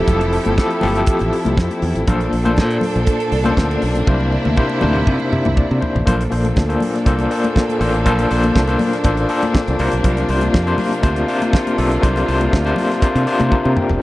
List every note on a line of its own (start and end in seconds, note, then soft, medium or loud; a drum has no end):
0.00 0.07 F3 medium
0.00 2.03 F3 medium
0.00 0.07 C4 medium
0.00 0.08 E4 medium
0.00 2.04 E4 medium
0.00 0.08 G4 medium
0.00 2.03 G4 medium
0.00 0.08 A4 medium
0.00 2.03 A4 medium
0.07 0.37 F1 loud
0.07 0.38 F3 medium
0.07 0.38 C4 medium
0.07 0.39 E4 medium
0.07 0.39 G4 medium
0.07 0.39 A4 medium
0.07 kick loud
0.07 closed hi-hat medium
0.07 muted conga soft
0.07 low conga medium
0.21 closed hi-hat soft
0.21 muted conga soft
0.33 open hi-hat medium
0.45 0.55 G1 medium
0.45 closed hi-hat soft
0.45 high conga medium
0.57 0.73 F3 medium
0.57 0.74 C4 medium
0.57 0.74 E4 medium
0.57 0.74 G4 medium
0.57 0.74 A4 medium
0.57 kick loud
0.57 snare loud
0.71 closed hi-hat soft
0.81 1.02 G1 medium
0.81 1.44 F3 medium
0.81 1.44 C4 medium
0.81 1.45 E4 medium
0.81 1.45 G4 medium
0.81 1.45 A4 loud
0.81 open hi-hat medium
0.81 high conga medium
0.81 low conga medium
0.96 closed hi-hat soft
1.07 kick loud
1.07 closed hi-hat medium
1.19 1.30 A1 medium
1.19 closed hi-hat soft
1.19 muted conga soft
1.33 open hi-hat medium
1.45 1.55 C2 medium
1.45 closed hi-hat medium
1.45 high conga medium
1.57 1.67 F2 medium
1.57 kick loud
1.57 snare medium
1.57 muted conga soft
1.71 closed hi-hat soft
1.71 high conga soft
1.82 1.93 E2 medium
1.82 open hi-hat medium
1.95 2.04 A1 medium
1.95 closed hi-hat medium
2.07 2.27 A#1 loud
2.07 2.30 A#2 medium
2.07 2.30 A#3 medium
2.07 6.03 A#3 medium
2.07 2.31 D4 medium
2.07 6.03 D4 medium
2.07 2.31 A4 medium
2.07 4.06 A4 medium
2.07 2.31 C5 medium
2.07 kick loud
2.07 closed hi-hat medium
2.07 muted conga soft
2.07 low conga medium
2.21 closed hi-hat soft
2.32 2.60 A#1 medium
2.32 open hi-hat medium
2.44 3.06 A#2 medium
2.44 3.06 A#3 medium
2.44 3.06 D4 medium
2.44 3.06 A4 medium
2.44 3.06 C5 loud
2.44 closed hi-hat soft
2.44 high conga medium
2.57 2.77 A#2 loud
2.57 kick loud
2.57 snare loud
2.57 muted conga soft
2.71 closed hi-hat soft
2.81 open hi-hat medium
2.81 high conga medium
2.81 low conga medium
2.96 3.05 A#1 medium
2.96 closed hi-hat soft
3.07 kick loud
3.07 closed hi-hat medium
3.07 muted conga soft
3.20 closed hi-hat soft
3.32 3.51 C2 medium
3.32 open hi-hat medium
3.44 3.82 A#2 medium
3.44 3.82 A#3 medium
3.44 3.51 C#4 medium
3.44 3.83 A4 medium
3.44 3.83 C5 medium
3.44 closed hi-hat medium
3.44 high conga medium
3.51 3.86 D4 medium
3.57 3.76 D2 medium
3.57 kick medium
3.57 snare loud
3.57 muted conga soft
3.71 closed hi-hat soft
3.71 muted conga soft
3.71 high conga soft
3.82 4.01 B1 medium
3.82 open hi-hat medium
3.95 closed hi-hat soft
4.06 4.36 C2 loud
4.06 4.38 C3 medium
4.06 6.05 C3 medium
4.06 4.38 A#3 medium
4.06 4.38 D4 medium
4.06 4.38 E4 medium
4.06 6.05 E4 medium
4.06 4.38 C5 medium
4.06 kick loud
4.06 high tom medium
4.06 muted conga soft
4.06 low conga medium
4.20 muted conga soft
4.32 high tom medium
4.45 4.55 D2 medium
4.45 high tom medium
4.45 high conga medium
4.56 4.72 C3 medium
4.56 4.72 A#3 medium
4.56 4.73 D4 medium
4.56 4.73 E4 medium
4.56 4.73 C5 medium
4.56 kick loud
4.56 mid tom medium
4.56 muted conga soft
4.70 muted conga soft
4.81 5.02 D2 medium
4.81 5.43 C3 medium
4.81 5.44 A#3 medium
4.81 5.44 D4 medium
4.81 4.88 D#4 medium
4.81 5.44 C5 loud
4.81 mid tom medium
4.81 high conga medium
4.81 low conga medium
4.88 5.47 E4 medium
4.96 mid tom medium
5.07 5.17 C3 loud
5.07 kick loud
5.07 mid tom medium
5.20 muted conga soft
5.32 5.42 C3 medium
5.32 5.55 E5 medium
5.32 mid tom medium
5.45 5.55 C2 medium
5.45 mid tom medium
5.45 high conga medium
5.56 5.80 D5 medium
5.56 kick loud
5.56 floor tom medium
5.56 muted conga soft
5.71 5.79 C3 medium
5.71 high conga soft
5.81 6.05 C5 medium
5.81 floor tom medium
5.95 6.04 A1 medium
5.95 floor tom medium
6.05 6.26 A#1 medium
6.05 6.22 A#2 medium
6.05 6.22 A#3 medium
6.05 9.76 A#3 medium
6.05 6.22 D4 medium
6.05 13.98 D4 medium
6.05 6.22 A4 medium
6.05 9.76 A4 medium
6.05 6.23 C5 medium
6.05 kick loud
6.05 closed hi-hat medium
6.05 muted conga soft
6.05 low conga medium
6.21 closed hi-hat soft
6.30 6.51 A#1 medium
6.30 6.54 A#2 medium
6.30 6.54 A#3 medium
6.30 6.54 D4 medium
6.30 6.55 A4 medium
6.30 6.55 C5 medium
6.30 open hi-hat medium
6.45 closed hi-hat soft
6.45 high conga medium
6.56 6.76 D2 medium
6.56 kick loud
6.56 snare loud
6.56 muted conga soft
6.68 6.92 A#2 medium
6.68 6.92 A#3 medium
6.68 6.92 D4 medium
6.68 6.92 A4 medium
6.68 6.92 C5 medium
6.68 closed hi-hat soft
6.80 open hi-hat medium
6.80 high conga medium
6.80 low conga medium
6.96 snare soft
6.96 closed hi-hat soft
7.05 7.25 C2 medium
7.05 7.22 A#2 medium
7.05 7.22 A#3 medium
7.05 7.22 D4 medium
7.05 7.22 A4 medium
7.05 7.22 C5 medium
7.05 kick loud
7.05 closed hi-hat medium
7.05 muted conga soft
7.19 closed hi-hat soft
7.19 muted conga soft
7.30 7.62 A#2 medium
7.30 7.62 A#3 medium
7.30 7.62 D4 medium
7.30 7.62 A4 medium
7.30 7.62 C5 medium
7.30 open hi-hat medium
7.44 closed hi-hat medium
7.44 high conga medium
7.56 kick loud
7.56 snare loud
7.56 muted conga soft
7.69 closed hi-hat soft
7.69 high conga soft
7.80 8.06 A1 loud
7.80 7.96 A#2 medium
7.80 7.96 A#3 medium
7.80 7.97 D4 medium
7.80 7.97 A4 medium
7.80 7.97 C5 medium
7.80 open hi-hat medium
7.94 closed hi-hat soft
8.05 8.25 A#1 loud
8.05 8.21 A#2 medium
8.05 8.21 A#3 medium
8.05 8.21 D4 medium
8.05 8.22 A4 medium
8.05 8.22 C5 loud
8.05 kick loud
8.05 closed hi-hat medium
8.05 low conga medium
8.19 closed hi-hat soft
8.19 muted conga soft
8.29 8.50 A#1 loud
8.29 8.53 A#2 medium
8.29 8.53 A#3 medium
8.29 8.54 D4 medium
8.29 8.54 A4 medium
8.29 8.54 C5 medium
8.29 open hi-hat medium
8.44 closed hi-hat soft
8.44 high conga medium
8.56 8.75 C2 medium
8.56 kick medium
8.56 snare loud
8.67 8.91 A#2 medium
8.67 8.91 A#3 medium
8.67 8.91 D4 medium
8.67 8.91 A4 medium
8.67 8.91 C5 medium
8.67 closed hi-hat soft
8.67 muted conga soft
8.79 open hi-hat medium
8.79 high conga medium
8.79 low conga medium
8.93 snare soft
8.93 closed hi-hat soft
9.04 9.24 A1 medium
9.04 9.21 A#2 medium
9.04 9.21 A#3 medium
9.04 9.21 D4 medium
9.04 9.21 A4 medium
9.04 9.21 C5 medium
9.04 kick loud
9.04 closed hi-hat medium
9.04 muted conga soft
9.17 closed hi-hat soft
9.29 9.60 A#2 medium
9.29 9.61 A#3 medium
9.29 9.61 D4 medium
9.29 9.61 A4 medium
9.29 9.61 C5 medium
9.29 open hi-hat medium
9.42 closed hi-hat medium
9.42 high conga medium
9.54 kick loud
9.54 snare loud
9.68 9.77 C2 medium
9.68 closed hi-hat soft
9.68 muted conga soft
9.68 high conga medium
9.78 9.90 C2 loud
9.78 13.97 C3 medium
9.78 10.20 C3 medium
9.78 13.97 A#3 medium
9.78 10.20 A#3 medium
9.78 10.20 D4 medium
9.78 13.97 F4 medium
9.78 10.20 F4 medium
9.78 10.21 C5 medium
9.78 open hi-hat medium
9.92 10.02 B1 medium
9.92 closed hi-hat medium
10.04 10.23 C2 loud
10.04 kick loud
10.04 closed hi-hat medium
10.04 muted conga soft
10.04 low conga loud
10.17 closed hi-hat soft
10.17 muted conga soft
10.28 10.48 C2 medium
10.28 10.52 C3 medium
10.28 10.52 A#3 medium
10.28 10.53 D4 medium
10.28 10.53 F4 medium
10.28 10.53 C5 medium
10.28 open hi-hat medium
10.41 closed hi-hat soft
10.41 high conga medium
10.54 10.73 F2 loud
10.54 kick loud
10.54 snare loud
10.54 muted conga soft
10.66 10.90 C3 medium
10.66 10.90 A#3 medium
10.66 10.90 D4 medium
10.66 10.90 F4 medium
10.66 10.90 C5 medium
10.66 closed hi-hat soft
10.78 open hi-hat medium
10.78 high conga medium
10.78 low conga medium
10.93 closed hi-hat soft
11.02 11.22 D2 loud
11.02 11.19 C3 medium
11.02 11.19 A#3 medium
11.02 11.19 D4 medium
11.02 11.19 F4 medium
11.02 11.20 C5 medium
11.02 kick loud
11.02 closed hi-hat medium
11.02 muted conga soft
11.16 closed hi-hat soft
11.28 11.59 C3 medium
11.28 11.59 A#3 medium
11.28 11.59 D4 medium
11.28 11.60 F4 medium
11.28 11.60 C5 loud
11.28 open hi-hat medium
11.42 closed hi-hat medium
11.42 high conga medium
11.53 kick loud
11.53 snare loud
11.53 muted conga soft
11.67 closed hi-hat medium
11.67 muted conga soft
11.67 high conga soft
11.77 11.97 B1 loud
11.77 11.94 C3 medium
11.77 11.94 A#3 medium
11.77 11.94 D4 medium
11.77 11.94 F4 medium
11.77 11.94 A4 loud
11.77 open hi-hat medium
11.92 closed hi-hat medium
12.01 12.22 C2 loud
12.01 12.18 C3 medium
12.01 12.18 A#3 medium
12.01 12.19 D4 medium
12.01 12.19 F4 medium
12.01 12.19 C5 medium
12.01 kick loud
12.01 closed hi-hat medium
12.01 low conga medium
12.16 closed hi-hat soft
12.16 muted conga soft
12.27 12.47 C2 medium
12.27 12.50 C3 medium
12.27 12.50 A#3 medium
12.27 12.51 D4 medium
12.27 12.51 F4 medium
12.27 12.51 C5 medium
12.27 open hi-hat medium
12.41 closed hi-hat soft
12.41 high conga medium
12.53 12.72 D2 loud
12.53 kick loud
12.53 snare loud
12.65 12.88 C3 medium
12.65 12.88 A#3 medium
12.65 12.88 D4 medium
12.65 12.89 F4 medium
12.65 12.89 C5 loud
12.65 closed hi-hat soft
12.65 muted conga soft
12.76 open hi-hat medium
12.76 high conga medium
12.76 low conga medium
12.92 snare soft
12.92 closed hi-hat soft
13.02 13.18 C3 medium
13.02 13.18 A#3 medium
13.02 13.18 D4 medium
13.02 13.18 F4 medium
13.02 13.19 C5 medium
13.02 kick loud
13.02 closed hi-hat medium
13.02 muted conga soft
13.15 13.24 C3 loud
13.15 closed hi-hat soft
13.26 13.57 C3 medium
13.26 13.58 A#3 medium
13.26 13.58 D4 medium
13.26 13.58 F4 medium
13.26 13.52 C5 loud
13.26 open hi-hat medium
13.40 13.49 C3 loud
13.40 closed hi-hat medium
13.40 high conga medium
13.52 13.76 D5 medium
13.52 13.76 A#5 medium
13.52 kick medium
13.52 high tom medium
13.52 muted conga soft
13.65 13.74 C3 medium
13.65 muted conga soft
13.65 high conga soft
13.76 14.02 A#4 medium
13.76 14.02 G5 medium
13.76 mid tom medium
13.89 13.99 E1 medium
13.89 floor tom medium